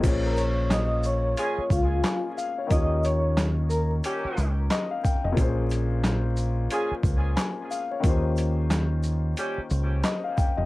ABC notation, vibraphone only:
X:1
M:4/4
L:1/16
Q:"Swing 16ths" 1/4=90
K:Bbdor
V:1 name="Vibraphone"
z [Bb] [dd']2 [ee']2 [dd']4 [Ff]3 z3 | [ee']2 [dd']2 z2 [Bb] z8 z | z16 | z16 |]